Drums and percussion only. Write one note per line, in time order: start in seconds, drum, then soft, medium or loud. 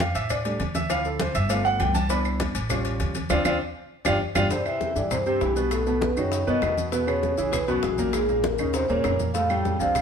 0.00 cowbell medium
0.00 high conga loud
0.00 maracas soft
0.15 cowbell medium
0.15 high conga soft
0.15 maracas medium
0.30 cowbell loud
0.30 high conga soft
0.30 low conga medium
0.30 claves medium
0.30 maracas loud
0.45 cowbell medium
0.45 high conga soft
0.45 maracas soft
0.60 cowbell medium
0.60 high conga medium
0.60 maracas soft
0.75 cowbell medium
0.75 high conga loud
0.75 maracas medium
0.90 cowbell loud
0.90 high conga soft
0.90 claves medium
0.90 maracas medium
1.05 high conga soft
1.05 maracas soft
1.20 cowbell medium
1.20 high conga loud
1.20 maracas soft
1.35 cowbell medium
1.35 high conga soft
1.35 claves medium
1.35 maracas medium
1.50 cowbell loud
1.50 high conga soft
1.50 maracas loud
1.65 high conga soft
1.65 maracas soft
1.80 cowbell medium
1.80 high conga medium
1.80 claves medium
1.80 maracas soft
1.95 cowbell medium
1.95 high conga medium
1.95 maracas medium
2.10 cowbell loud
2.10 high conga soft
2.10 maracas loud
2.25 high conga soft
2.25 claves medium
2.25 maracas soft
2.40 cowbell medium
2.40 high conga loud
2.40 maracas soft
2.55 cowbell medium
2.55 high conga soft
2.55 maracas medium
2.70 cowbell loud
2.70 high conga soft
2.70 low conga medium
2.70 claves medium
2.70 maracas loud
2.85 cowbell medium
2.85 high conga soft
2.85 maracas soft
3.00 cowbell medium
3.00 high conga medium
3.00 maracas soft
3.15 cowbell medium
3.15 high conga medium
3.15 maracas medium
3.30 cowbell loud
3.30 high conga loud
3.30 claves loud
3.30 maracas loud
3.45 cowbell loud
3.45 high conga loud
3.45 claves loud
3.45 maracas loud
4.05 cowbell loud
4.05 high conga loud
4.05 claves loud
4.05 maracas medium
4.35 cowbell loud
4.35 high conga loud
4.35 claves loud
4.35 maracas loud
4.51 high bongo medium
4.51 high conga soft
4.51 maracas medium
4.66 high conga soft
4.66 claves medium
4.66 maracas soft
4.81 high bongo medium
4.81 high conga medium
4.81 maracas soft
4.96 high bongo soft
4.96 high conga soft
4.96 maracas medium
5.11 high bongo medium
5.11 high conga soft
5.11 low conga medium
5.11 claves medium
5.11 maracas medium
5.26 high bongo soft
5.26 high conga soft
5.26 maracas soft
5.41 high bongo medium
5.41 low bongo medium
5.41 high conga soft
5.41 maracas soft
5.56 high bongo soft
5.56 maracas medium
5.71 high bongo medium
5.71 high conga soft
5.71 claves medium
5.71 maracas medium
5.86 high bongo soft
5.86 high conga soft
5.86 maracas soft
6.01 high bongo medium
6.01 high conga loud
6.01 maracas soft
6.16 high bongo soft
6.16 high conga soft
6.16 claves medium
6.16 maracas medium
6.32 high bongo medium
6.32 high conga soft
6.32 maracas medium
6.48 high conga soft
6.48 maracas soft
6.62 high bongo medium
6.62 low bongo medium
6.62 high conga soft
6.62 claves medium
6.62 maracas soft
6.77 high bongo soft
6.77 high conga medium
6.77 maracas medium
6.92 high bongo medium
6.92 high conga soft
6.92 maracas medium
7.08 high conga soft
7.08 claves medium
7.08 maracas soft
7.23 high bongo medium
7.23 high conga medium
7.23 maracas soft
7.38 high bongo soft
7.38 high conga soft
7.38 maracas medium
7.53 high bongo medium
7.53 high conga soft
7.53 low conga medium
7.53 claves medium
7.53 maracas medium
7.68 high bongo soft
7.68 high conga soft
7.68 maracas soft
7.83 high bongo medium
7.83 low bongo medium
7.83 high conga soft
7.83 maracas soft
7.98 high bongo soft
7.98 high conga medium
7.98 maracas medium
8.13 high bongo medium
8.13 high conga soft
8.13 claves medium
8.13 maracas medium
8.29 high bongo soft
8.29 high conga soft
8.29 maracas soft
8.43 high bongo medium
8.43 high conga loud
8.43 maracas soft
8.58 high bongo soft
8.58 high conga soft
8.58 claves medium
8.58 maracas medium
8.74 high bongo medium
8.74 high conga soft
8.74 maracas medium
8.89 high conga soft
8.89 maracas soft
9.04 high bongo medium
9.04 low bongo medium
9.04 high conga soft
9.04 claves medium
9.04 maracas soft
9.19 high bongo soft
9.19 high conga medium
9.19 maracas medium
9.35 high bongo medium
9.35 maracas medium
9.50 claves medium
9.50 maracas soft
9.65 high bongo medium
9.65 high conga medium
9.65 maracas soft
9.80 high bongo soft
9.80 maracas medium
9.95 high bongo medium
9.95 high conga soft
9.95 low conga medium
9.95 claves medium
9.95 maracas medium